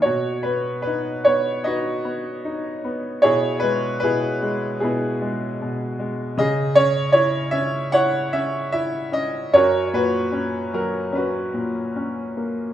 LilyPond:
<<
  \new Staff \with { instrumentName = "Upright piano" } { \time 4/4 \key b \major \tempo 4 = 75 << { cis''8 b'8 b'8 cis''8 dis''4. r8 | cis''8 b'8 b'4 gis'4. r8 | dis''8 cis''8 cis''8 e''8 fis''8 e''8 e''8 dis''8 | cis''8 b'4 ais'8 b'4. r8 | } \\ { fis'2 <fis' b'>2 | <e' gis'>4 <e' gis'>4 <b e'>2 | gis'2 cis''2 | <fis' ais'>8 fis'4. fis'2 | } >> }
  \new Staff \with { instrumentName = "Upright piano" } { \time 4/4 \key b \major b,8 b8 dis'8 b8 dis'8 b8 dis'8 b8 | b,8 gis8 b,8 gis8 b,8 gis8 b,8 gis8 | cis8 cis'8 e'8 cis'8 e'8 cis'8 e'8 cis'8 | fis,8 ais,8 cis'8 fis8 cis'8 ais,8 cis'8 ais8 | }
>>